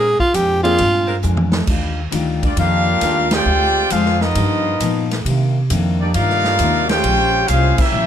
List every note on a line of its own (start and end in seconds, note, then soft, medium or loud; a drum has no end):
0.00 0.18 A#2 medium
0.00 0.21 A#2 soft
0.00 0.22 G#3 soft
0.00 0.22 C4 medium
0.00 0.22 D4 medium
0.00 0.19 G#4 loud
0.19 0.36 F4 loud
0.19 muted upright bass stroke soft
0.19 kick medium
0.33 0.77 F2 loud
0.33 0.66 A#2 medium
0.33 0.66 G#3 medium
0.33 0.66 C4 medium
0.33 0.67 D4 medium
0.33 0.63 G4 loud
0.33 hi-hat pedal medium
0.33 ride medium
0.63 0.77 F3 medium
0.63 0.77 A#3 medium
0.63 0.77 C4 medium
0.63 0.77 D4 medium
0.63 1.19 F4 loud
0.63 0.77 G#4 medium
0.63 ride medium
0.78 1.23 G2 medium
0.78 1.10 A#2 soft
0.78 1.11 G#3 medium
0.78 1.12 C4 medium
0.78 1.12 D4 medium
0.78 ride medium
1.07 1.18 G#3 medium
1.07 1.18 C4 medium
1.07 1.18 D4 medium
1.07 1.18 A#4 loud
1.22 1.67 F2 loud
1.22 1.55 A#2 medium
1.22 1.55 G#3 medium
1.22 1.55 C4 medium
1.22 1.56 D4 medium
1.22 hi-hat pedal medium
1.37 mid tom medium
1.52 snare loud
1.67 2.11 D#2 medium
1.67 1.99 D#3 medium
1.67 2.00 G3 medium
1.67 2.01 D4 medium
1.67 2.01 F4 medium
1.67 kick medium
1.67 crash medium
2.11 2.56 D2 medium
2.11 2.44 D#3 medium
2.11 2.44 G3 medium
2.11 2.44 D4 medium
2.11 2.45 F4 medium
2.11 hi-hat pedal medium
2.11 ride medium
2.43 2.56 G3 medium
2.43 2.56 A#3 medium
2.43 2.57 A#3 medium
2.43 2.56 D4 medium
2.43 2.58 F4 medium
2.43 2.57 G4 medium
2.43 2.58 D5 medium
2.43 kick medium
2.43 ride medium
2.56 3.00 F2 loud
2.56 2.89 D#3 soft
2.56 2.90 G3 medium
2.56 3.29 A#3 medium
2.56 3.29 D4 medium
2.56 2.90 D4 medium
2.56 3.29 D4 medium
2.56 3.29 F4 medium
2.56 2.90 F4 medium
2.56 3.30 G4 loud
2.56 3.30 A#4 loud
2.56 3.30 F5 loud
2.56 ride medium
3.01 3.45 D#2 medium
3.01 3.34 D#3 medium
3.01 3.34 G3 medium
3.01 3.35 D4 medium
3.01 3.35 F4 medium
3.01 snare soft
3.01 hi-hat pedal medium
3.01 ride medium
3.31 3.90 G#3 loud
3.31 3.90 C4 loud
3.31 3.91 G4 loud
3.31 snare loud
3.31 ride medium
3.35 3.93 F4 loud
3.35 3.91 C5 loud
3.35 3.93 D5 loud
3.35 3.92 G5 loud
3.45 3.89 D2 medium
3.45 3.78 D3 soft
3.45 3.78 G#3 medium
3.45 3.79 C4 soft
3.45 3.79 F4 medium
3.90 4.34 F2 loud
3.90 4.23 D3 medium
3.90 4.23 G#3 medium
3.90 4.22 G#3 medium
3.90 4.22 C4 medium
3.90 4.23 C4 medium
3.90 4.22 D4 medium
3.90 4.22 F4 medium
3.90 4.24 F4 medium
3.90 4.22 G#4 medium
3.90 4.22 C5 medium
3.90 4.22 F5 loud
3.90 hi-hat pedal medium
3.90 ride medium
4.05 snare soft
4.21 5.11 F3 medium
4.21 5.11 B3 medium
4.21 5.11 D#4 medium
4.21 5.11 F4 medium
4.21 5.11 A#4 medium
4.21 5.11 D#5 loud
4.21 snare medium
4.35 4.79 G2 loud
4.35 4.68 G2 medium
4.35 4.68 F3 medium
4.35 4.69 B3 medium
4.35 4.69 D#4 medium
4.35 ride medium
4.80 5.13 G2 medium
4.80 5.24 A#2 loud
4.80 5.13 F3 medium
4.80 5.13 B3 medium
4.80 5.14 D#4 medium
4.80 hi-hat pedal medium
4.80 ride medium
5.11 snare medium
5.11 ride medium
5.25 5.68 C3 loud
5.25 5.58 C3 medium
5.25 5.59 D#3 medium
5.25 5.59 A#3 medium
5.25 ride medium
5.30 5.59 D4 medium
5.70 6.13 F2 loud
5.70 6.02 C3 medium
5.70 6.03 D#3 medium
5.70 6.03 A#3 medium
5.70 6.03 D4 medium
5.70 hi-hat pedal medium
5.70 ride medium
6.01 6.14 G3 medium
6.01 6.14 A#3 medium
6.01 6.14 D4 medium
6.01 6.14 D#4 medium
6.01 6.14 G4 medium
6.01 6.14 D5 medium
6.14 6.58 G2 loud
6.14 6.47 C3 medium
6.14 6.47 D#3 medium
6.14 6.86 G3 medium
6.14 6.86 A#3 medium
6.14 6.48 A#3 medium
6.14 6.86 D#4 loud
6.14 6.86 F4 loud
6.14 6.86 A#4 medium
6.14 6.86 D5 loud
6.14 6.86 F5 loud
6.14 ride medium
6.18 6.48 D4 medium
6.30 snare soft
6.44 snare medium
6.59 7.02 D#2 medium
6.59 6.91 C3 medium
6.59 6.91 D#3 medium
6.59 6.92 A#3 medium
6.59 6.92 D4 medium
6.59 hi-hat pedal medium
6.59 ride medium
6.88 7.47 G#3 medium
6.88 7.46 C#4 loud
6.88 7.48 F4 loud
6.88 7.47 G4 loud
6.88 7.47 C5 loud
6.88 7.48 C#5 loud
6.88 7.48 G5 loud
6.88 snare medium
6.88 ride medium
7.03 7.47 A#1 loud
7.03 7.35 A#3 soft
7.03 7.36 C#4 medium
7.03 7.36 G#4 medium
7.03 7.37 C5 medium
7.03 ride medium
7.47 7.77 C2 loud
7.47 7.78 G#3 medium
7.47 7.80 A#3 medium
7.47 7.75 C#4 medium
7.47 7.78 C#4 medium
7.47 7.80 C#4 medium
7.47 7.78 F4 medium
7.47 7.79 G#4 medium
7.47 7.81 G#4 medium
7.47 7.78 C5 loud
7.47 7.81 C5 medium
7.47 7.78 F5 loud
7.47 hi-hat pedal medium
7.47 ride medium
7.76 8.06 A#3 medium
7.76 8.06 C#4 medium
7.76 8.06 E4 medium
7.76 8.06 G4 medium
7.76 8.06 A#4 medium
7.76 8.06 E5 loud
7.76 kick loud
7.76 crash loud
7.81 8.06 C#4 medium
7.92 8.06 A#1 medium
7.92 8.06 D#3 soft
7.92 8.06 G3 medium
7.92 8.06 C#4 medium
7.92 8.06 E4 medium